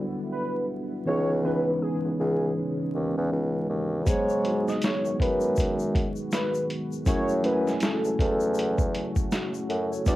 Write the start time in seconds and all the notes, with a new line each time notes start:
Already playing: D2 D3 F#3 G3 B3 D4 E4 F#4
0.32 B4
1.05 C#2 C#3 E3 G#3 B3 C#4 D#4 G#4 C#5
1.43 E3 B3 C#4 D#4 B4
1.82 G#4
2.05 C#2
2.19 C#2 G#4
2.94 D#2
3.17 E2
3.32 C#2
3.69 D#2
4.06 G#2 D#3 F#3 G#3 B3 D#4 F#4 C#5, kick, closed hi-hat, shaker
4.10 G#4
4.29 shaker
4.43 F#3 G#3 B3 D#4 F#4, closed hi-hat
4.53 G#4
4.68 D#5, snare, shaker
4.82 C#5, snare, closed hi-hat, shaker
5.05 F#2, shaker
5.20 F#2 B4, kick, closed hi-hat
5.41 shaker
5.56 kick, closed hi-hat, shaker
5.79 shaker
5.95 kick, closed hi-hat
6.16 shaker
6.32 B4, snare, closed hi-hat, shaker
6.54 shaker
6.70 closed hi-hat
6.92 shaker
7.05 F#2 C#3 F#3 A3 C#4 E4 F#4 G#4 C#5, kick, closed hi-hat, shaker
7.29 shaker
7.42 F#3 A3 C#4 E4 B4, closed hi-hat
7.46 F#4
7.53 G#5
7.67 snare, shaker
7.80 A4, snare, closed hi-hat, shaker
8.05 E2, shaker
8.19 E2 A4, kick, closed hi-hat
8.40 shaker
8.54 shaker
8.59 closed hi-hat
8.78 kick, shaker
8.95 closed hi-hat
9.16 kick, shaker
9.32 F#4, snare, closed hi-hat, shaker
9.54 shaker
9.69 F#2 A4, closed hi-hat
9.92 C#5, shaker
10.05 E2 D3 G3 B3 D4 E4 D5, kick, closed hi-hat, shaker
10.09 F#4